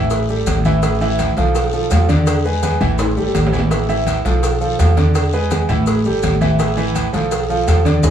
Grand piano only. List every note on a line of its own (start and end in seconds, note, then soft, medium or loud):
0.00 0.23 E3 medium
0.00 0.23 E4 medium
0.00 0.23 E5 loud
0.29 0.59 G3 medium
0.29 0.59 G4 medium
0.29 0.59 A4 medium
0.66 0.80 E3 loud
0.66 0.80 E4 medium
0.66 0.80 E5 medium
0.83 0.98 E3 medium
0.83 0.98 E4 medium
0.83 0.98 E5 medium
1.01 1.31 E3 loud
1.01 1.31 E4 loud
1.01 1.31 E5 loud
1.37 1.67 F3 medium
1.37 1.67 F4 medium
1.37 1.67 A4 medium
1.73 1.88 F3 medium
1.73 1.88 F4 medium
1.73 1.88 A4 medium
1.90 2.05 F3 medium
1.90 2.06 F4 medium
1.90 2.06 A4 medium
2.09 2.38 D3 loud
2.09 2.38 D4 medium
2.09 2.38 D5 medium
2.45 2.60 G#3 medium
2.45 2.60 G#4 medium
2.45 2.60 B4 medium
2.62 2.77 G#3 medium
2.62 2.77 G#4 medium
2.62 2.78 B4 medium
2.81 3.10 E3 medium
2.81 3.10 E4 medium
2.81 3.11 E5 medium
3.17 3.47 G3 medium
3.17 3.47 G4 medium
3.17 3.47 A4 medium
3.53 3.68 E3 medium
3.53 3.68 E4 medium
3.53 3.68 E5 medium
3.71 3.86 E3 medium
3.71 3.86 E4 medium
3.71 3.86 E5 medium
3.89 4.19 E3 medium
3.89 4.19 E4 medium
3.89 4.19 E5 medium
4.25 4.55 F3 medium
4.25 4.55 F4 medium
4.25 4.55 A4 medium
4.61 4.76 F3 medium
4.61 4.76 F4 medium
4.61 4.76 A4 medium
4.79 4.94 F3 medium
4.79 4.94 F4 medium
4.79 4.94 A4 medium
4.97 5.27 D3 medium
4.97 5.27 D4 medium
4.97 5.27 D5 medium
5.33 5.48 G#3 medium
5.33 5.48 G#4 medium
5.33 5.48 B4 medium
5.51 5.66 G#3 medium
5.51 5.66 G#4 medium
5.51 5.66 B4 medium
5.69 5.99 E3 medium
5.69 5.99 E4 medium
5.69 6.00 E5 medium
6.06 6.35 G3 medium
6.06 6.35 G4 medium
6.06 6.36 A4 medium
6.41 6.56 E3 loud
6.41 6.56 E4 medium
6.41 6.56 E5 medium
6.59 6.74 E3 medium
6.59 6.74 E4 medium
6.59 6.74 E5 medium
6.77 7.07 E3 loud
6.77 7.07 E4 medium
6.77 7.07 E5 medium
7.13 7.43 F3 medium
7.13 7.43 F4 medium
7.13 7.43 A4 medium
7.50 7.64 F3 medium
7.50 7.65 F4 medium
7.50 7.65 A4 medium
7.68 7.82 F3 medium
7.68 7.83 F4 medium
7.68 7.83 A4 medium
7.85 8.00 D3 medium
7.85 8.01 D4 medium
7.85 8.01 D5 medium
8.03 8.10 D4 medium
8.03 8.10 E4 loud
8.03 8.10 G#4 loud